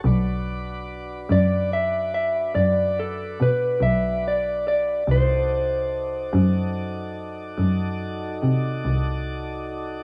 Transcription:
<<
  \new Staff \with { instrumentName = "Clean electric guitar" } { \time 12/8 \key b \dorian \tempo 4. = 48 r4. d''8 e''8 e''8 d''8 a'8 b'8 e''8 d''8 d''8 | c''1 r2 | }
  \new Staff \with { instrumentName = "Tonewheel organ" } { \time 12/8 \key b \dorian <d' fis' b' d''>1. | <ees' ges' a' d''>1. | }
  \new Staff \with { instrumentName = "Double bass" } { \clef bass \time 12/8 \key b \dorian b,,4. fis,4. fis,4 b,8 b,,4. | c,4. ges,4. ges,4 c8 c,4. | }
>>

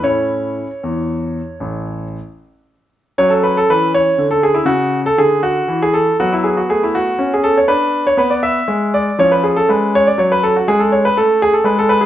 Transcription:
<<
  \new Staff \with { instrumentName = "Grand piano" } { \time 12/8 \key a \major \tempo 4. = 80 << { cis''1~ cis''8 r4. | \key fis \minor cis''16 a'16 b'16 a'16 b'8 cis''8. a'16 gis'16 e'16 fis'8. a'16 gis'8 fis'8. gis'16 a'8 | fis'16 e'16 gis'16 fis'16 gis'16 e'16 fis'8. gis'16 a'16 cis''16 b'8. cis''16 b'16 d''16 e''4 d''8 | cis''16 b'16 gis'16 a'16 b'8 cis''16 d''16 cis''16 b'16 a'16 fis'16 gis'16 a'16 cis''16 b'16 a'8 gis'16 a'16 b'16 a'16 b'16 gis'16 | } \\ { r1. | cis'1. | b1. | cis'1. | } >> }
  \new Staff \with { instrumentName = "Grand piano" } { \clef bass \time 12/8 \key a \major <a, cis' e'>4. e,4. a,,4. r4. | \key fis \minor fis4 e4 d4 cis4 d4 e4 | fis4 a4 cis'4 d'4 b4 gis4 | eis4 gis4 fis4 gis4 a4 gis4 | }
>>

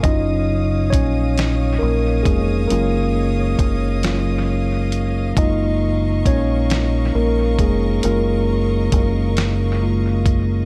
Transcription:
<<
  \new Staff \with { instrumentName = "String section" } { \time 6/8 \key dis \minor \tempo 4. = 45 << { <cis'' dis'''>2.~ | <cis'' dis'''>2. | <ais' cis'''>2.~ | <ais' cis'''>2. | } \\ { <dis'' eis''>2.~ | <dis'' eis''>2.~ | <dis'' eis''>2.~ | <dis'' eis''>2. | } >> }
  \new Staff \with { instrumentName = "Tine electric piano" } { \time 6/8 \key dis \minor <dis' dis''>4 <cis' cis''>4 <ais ais'>8 <gis gis'>8 | <ais ais'>2 r4 | <dis' dis''>4 <cis' cis''>4 <ais ais'>8 <gis gis'>8 | ais'2 r4 | }
  \new Staff \with { instrumentName = "Tine electric piano" } { \time 6/8 \key dis \minor <fis cis' eis'>2. | <fis cis' eis'>4. <fis cis' eis'>8 r4 | <gis ais eis'>4. r4. | <gis ais eis'>2 <gis ais eis'>8 r8 | }
  \new Staff \with { instrumentName = "Fingered electric bass" } { \clef bass \time 6/8 \key dis \minor fis,,4 ais,,4 ais,,8 eis,,8 | fis,,4 fis,,2 | fis,,4 ais,,4 ais,,8 eis,,8 | fis,,4 fis,,2 | }
  \new DrumStaff \with { instrumentName = "Drums" } \drummode { \time 6/8 <hh bd>4 <hh bd>8 <hh sn>4 <hh bd>8 | hh4 <hh bd>8 <hh sn>4 hh8 | <hh bd>4 <hh bd>8 <hh sn>4 <hh bd>8 | hh4 <hh bd>8 <hh sn>4 <hh bd>8 | }
>>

